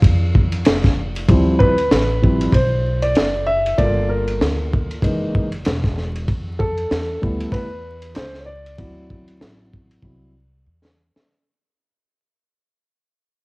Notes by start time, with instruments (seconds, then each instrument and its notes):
Already playing: grand piano F5
0.02 upright bass F2, kick, ride
0.35 kick
0.52 ride
0.65 upright bass F1, snare, hi-hat pedal, ride
0.84 kick, snare
1.16 ride
1.28 upright bass D2, grand piano F3 G3 C4 E4, kick, ride
1.59 grand piano B4, kick
1.78 ride
1.91 upright bass A1, snare, hi-hat pedal, ride
2.22 grand piano F3 G3 C4 E4, kick
2.41 ride
2.52 upright bass B1, grand piano C5, kick, ride
3.02 grand piano D5, ride
3.15 upright bass F#1, snare, hi-hat pedal, ride
3.46 grand piano E5
3.66 ride
3.78 upright bass G1, grand piano A#3 F4 A4 D5, kick, ride
4.09 grand piano A#4
4.28 ride
4.41 upright bass D2, snare, hi-hat pedal, ride
4.73 kick
4.91 ride
5.02 upright bass F#1, grand piano E3 G#3 A#3 D#4, kick, ride
5.35 kick
5.52 ride
5.65 upright bass E1, snare, hi-hat pedal, ride
5.84 kick, snare
5.98 snare
6.15 ride
6.28 upright bass F2, kick, ride
6.59 grand piano A4, kick
6.77 ride
6.91 upright bass E2, snare, hi-hat pedal, ride
7.22 upright bass D2, grand piano G3 A3 B3 E4, kick
7.40 ride
7.52 grand piano B4, kick, ride
8.02 ride
8.15 upright bass C#2, grand piano C5, snare, hi-hat pedal, ride
8.34 snare
8.40 grand piano C#5
8.46 grand piano D5
8.66 ride
8.78 upright bass D2, grand piano F#3 C4 E4, kick, ride
9.10 kick
9.28 ride
9.41 upright bass A1, snare, hi-hat pedal, ride
9.74 kick
9.91 ride
10.02 upright bass C2, grand piano F#3 C4 E4, kick
10.66 upright bass E2
10.85 snare
11.16 snare